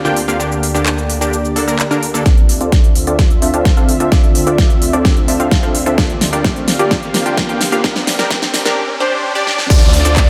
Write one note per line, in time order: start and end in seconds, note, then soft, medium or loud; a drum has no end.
0.00 2.22 D2 medium
0.00 0.38 D3 medium
0.00 0.36 C4 medium
0.00 0.38 G4 medium
0.00 0.38 F5 medium
0.05 0.20 D3 medium
0.05 0.20 A#3 medium
0.05 0.20 D4 medium
0.05 0.20 F4 medium
0.05 0.20 G4 medium
0.05 0.20 G5 loud
0.05 cabasa soft
0.16 open hi-hat loud
0.28 0.38 D3 medium
0.28 0.38 A#3 medium
0.28 0.38 D4 medium
0.28 0.38 F4 medium
0.28 0.38 G4 medium
0.28 0.38 F5 medium
0.28 cabasa medium
0.40 0.72 D3 medium
0.40 2.24 D3 medium
0.40 0.72 A#3 medium
0.40 2.24 A#3 medium
0.40 0.72 D4 medium
0.40 0.72 G4 medium
0.40 2.24 G4 medium
0.40 2.24 D5 medium
0.40 cabasa medium
0.52 cabasa soft
0.63 open hi-hat medium
0.74 1.18 D3 medium
0.74 1.18 A#3 medium
0.74 1.18 D4 medium
0.74 1.18 G4 medium
0.74 cabasa medium
0.86 clap loud
0.86 cabasa medium
0.98 cabasa soft
1.10 open hi-hat loud
1.21 1.36 D3 medium
1.21 1.36 A#3 medium
1.21 1.36 D4 medium
1.21 1.36 G4 medium
1.21 cabasa medium
1.33 cabasa medium
1.45 cabasa soft
1.56 1.65 D3 medium
1.56 1.65 A#3 medium
1.56 1.65 D4 medium
1.56 1.65 A4 medium
1.56 open hi-hat loud
1.68 1.82 D3 medium
1.68 1.82 A#3 medium
1.68 1.82 D4 medium
1.68 1.82 A#4 medium
1.68 cabasa medium
1.79 clap loud
1.79 cabasa medium
1.91 2.06 D3 loud
1.91 2.06 A#3 medium
1.91 2.06 D4 medium
1.91 2.06 A#4 loud
1.91 cabasa soft
2.03 open hi-hat medium
2.14 2.24 D3 medium
2.14 2.24 A#3 medium
2.14 2.24 D4 medium
2.14 2.24 A4 medium
2.14 cabasa medium
2.26 8.73 D2 medium
2.26 8.73 D3 medium
2.26 2.58 C4 medium
2.26 7.80 C4 medium
2.26 2.58 D4 medium
2.26 2.58 F4 medium
2.26 5.94 F4 medium
2.26 5.94 E5 medium
2.26 kick loud
2.26 snare soft
2.26 closed hi-hat medium
2.26 riser medium
2.37 closed hi-hat soft
2.49 open hi-hat loud
2.61 3.04 C4 medium
2.61 3.04 D4 medium
2.61 3.04 F4 medium
2.61 3.04 A4 medium
2.61 3.04 D5 medium
2.61 closed hi-hat medium
2.72 kick loud
2.72 snare soft
2.72 closed hi-hat medium
2.84 closed hi-hat soft
2.95 open hi-hat loud
3.07 3.22 C4 medium
3.07 3.22 D4 medium
3.07 3.22 F4 medium
3.07 3.22 A4 medium
3.07 3.22 D5 medium
3.07 closed hi-hat medium
3.19 kick loud
3.19 snare medium
3.19 closed hi-hat medium
3.30 closed hi-hat soft
3.42 3.51 C4 medium
3.42 3.51 D4 medium
3.42 3.51 F4 medium
3.42 3.51 A4 medium
3.42 3.51 E5 medium
3.42 open hi-hat loud
3.54 3.69 C4 medium
3.54 3.69 D4 medium
3.54 3.69 F4 medium
3.54 3.69 A4 medium
3.54 3.69 F5 medium
3.54 closed hi-hat medium
3.65 kick loud
3.65 snare medium
3.65 closed hi-hat medium
3.77 3.92 C4 loud
3.77 3.92 D4 medium
3.77 3.92 F4 medium
3.77 3.92 A4 medium
3.77 3.92 F5 loud
3.77 closed hi-hat soft
3.89 open hi-hat loud
4.00 4.10 C4 medium
4.00 4.10 D4 medium
4.00 4.10 F4 medium
4.00 4.10 A4 medium
4.00 4.10 E5 medium
4.00 closed hi-hat medium
4.12 4.44 D4 medium
4.12 4.44 F4 medium
4.12 4.44 A4 medium
4.12 4.44 D5 medium
4.12 kick loud
4.12 snare medium
4.12 closed hi-hat medium
4.24 closed hi-hat soft
4.35 open hi-hat loud
4.47 4.90 C4 medium
4.47 4.90 D4 medium
4.47 4.91 F4 medium
4.47 4.91 A4 medium
4.47 4.91 D5 medium
4.47 closed hi-hat medium
4.58 kick loud
4.58 snare medium
4.58 closed hi-hat medium
4.70 closed hi-hat soft
4.82 open hi-hat loud
4.93 5.08 C4 medium
4.93 5.08 D4 medium
4.93 5.08 F4 medium
4.93 5.08 A4 medium
4.93 5.08 D5 medium
4.93 closed hi-hat medium
5.05 kick loud
5.05 snare medium
5.05 closed hi-hat medium
5.17 closed hi-hat soft
5.28 5.37 C4 medium
5.28 5.37 D4 medium
5.28 5.37 F4 medium
5.28 5.37 A4 medium
5.28 5.37 E5 medium
5.28 open hi-hat loud
5.40 5.55 C4 medium
5.40 5.55 D4 medium
5.40 5.55 F4 medium
5.40 5.55 A4 medium
5.40 5.55 F5 medium
5.40 closed hi-hat medium
5.51 kick loud
5.51 snare medium
5.51 closed hi-hat medium
5.63 5.78 C4 loud
5.63 5.78 D4 medium
5.63 5.78 F4 medium
5.63 5.78 A4 medium
5.63 5.78 F5 loud
5.63 closed hi-hat soft
5.75 open hi-hat loud
5.86 5.96 C4 medium
5.86 5.96 D4 medium
5.86 5.96 F4 medium
5.86 5.96 A4 medium
5.86 5.96 E5 medium
5.86 closed hi-hat medium
5.98 6.30 A#3 medium
5.98 6.30 D4 medium
5.98 6.30 F4 medium
5.98 6.30 G4 medium
5.98 7.82 G4 medium
5.98 6.30 D5 medium
5.98 7.82 F5 medium
5.98 kick loud
5.98 snare medium
5.98 closed hi-hat soft
6.10 closed hi-hat soft
6.21 snare medium
6.21 open hi-hat loud
6.33 6.77 A#3 medium
6.33 6.77 D4 medium
6.33 6.77 F4 medium
6.33 6.77 G4 medium
6.33 6.77 D5 medium
6.33 closed hi-hat medium
6.44 kick loud
6.44 snare medium
6.44 closed hi-hat soft
6.56 closed hi-hat soft
6.68 snare medium
6.68 open hi-hat loud
6.79 6.94 A#3 medium
6.79 6.94 D4 medium
6.79 6.94 F4 medium
6.79 6.94 G4 medium
6.79 6.94 D5 medium
6.79 closed hi-hat medium
6.91 kick loud
6.91 snare medium
6.91 closed hi-hat medium
7.03 closed hi-hat soft
7.14 7.23 A#3 medium
7.14 7.23 D4 medium
7.14 7.23 F4 medium
7.14 7.23 G4 medium
7.14 7.23 F5 medium
7.14 snare medium
7.14 open hi-hat loud
7.26 7.41 A#3 medium
7.26 7.41 D4 medium
7.26 7.41 F4 medium
7.26 7.41 G4 medium
7.26 7.41 G5 medium
7.26 closed hi-hat medium
7.37 kick loud
7.37 snare medium
7.37 closed hi-hat soft
7.49 7.64 A#3 loud
7.49 7.64 D4 medium
7.49 7.64 F4 medium
7.49 7.64 G4 medium
7.49 7.64 G5 loud
7.49 closed hi-hat soft
7.61 snare medium
7.61 open hi-hat loud
7.72 7.82 A#3 medium
7.72 7.82 D4 medium
7.72 7.82 F4 medium
7.72 7.82 G4 medium
7.72 7.82 F5 medium
7.72 closed hi-hat medium
7.84 8.76 A#3 medium
7.84 8.16 D4 medium
7.84 8.76 G4 medium
7.84 8.16 G4 medium
7.84 8.16 A#4 medium
7.84 8.76 D5 medium
7.84 kick loud
7.84 snare medium
7.84 closed hi-hat soft
7.96 snare medium
7.96 closed hi-hat soft
8.07 snare medium
8.07 open hi-hat loud
8.19 8.63 D4 medium
8.19 8.63 G4 medium
8.19 8.63 A#4 medium
8.19 snare medium
8.19 closed hi-hat soft
8.31 kick loud
8.31 snare loud
8.31 closed hi-hat soft
8.42 snare medium
8.42 closed hi-hat soft
8.54 snare loud
8.54 open hi-hat loud
8.65 8.80 D4 medium
8.65 8.80 G4 medium
8.65 8.80 A#4 medium
8.65 snare medium
8.65 closed hi-hat soft
9.00 9.32 D4 medium
9.00 9.32 G4 medium
9.00 9.32 C5 loud
9.35 9.67 D4 medium
9.35 9.67 G4 medium
9.35 9.67 D5 medium
9.47 snare medium
9.58 snare medium
9.70 10.03 D2 medium
9.70 10.30 D3 medium
9.70 10.30 A3 medium
9.70 10.02 C4 medium
9.70 10.30 C4 medium
9.70 10.02 D4 medium
9.70 10.02 F4 medium
9.70 10.30 F4 medium
9.70 10.02 A4 medium
9.70 10.02 D5 medium
9.70 10.30 E5 medium
9.70 kick loud
9.70 closed hi-hat medium
9.70 ride medium
9.70 crash loud
9.70 downlifter medium
9.70 cabasa medium
9.82 closed hi-hat soft
9.82 cabasa soft
9.93 open hi-hat loud
10.05 10.30 D2 loud
10.05 10.30 C4 medium
10.05 10.30 D4 medium
10.05 10.30 F4 medium
10.05 10.30 A4 medium
10.05 10.30 D5 medium
10.05 closed hi-hat medium
10.05 cabasa medium
10.16 kick loud
10.16 clap loud
10.16 closed hi-hat medium
10.16 ride medium
10.16 cabasa medium